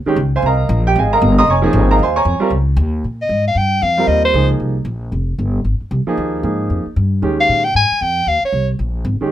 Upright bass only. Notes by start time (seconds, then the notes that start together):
0.05 muted upright bass stroke
0.16 C#2
0.42 C2
0.69 A#1
0.96 G#1
1.22 G1
1.47 F1
1.73 G#1
1.99 D#2
2.25 F2
2.40 muted upright bass stroke
2.50 C#2
2.76 D#2
3.04 A#2
3.29 G#2
3.55 G2
3.82 F2
4.07 D#2
4.34 C#2
4.60 C2
4.85 A#1
5.12 F1
5.38 G1
5.64 G#1
5.80 muted upright bass stroke
5.91 C2
6.06 muted upright bass stroke
6.17 D#2
6.43 G#2
6.70 F2
6.86 muted upright bass stroke
6.96 G2
7.22 D#2
7.49 A#2
7.75 G#2
7.91 muted upright bass stroke
8.01 F2
8.26 D#2
8.43 muted upright bass stroke
8.53 C2
8.79 A#1
9.05 G#1
9.21 muted upright bass stroke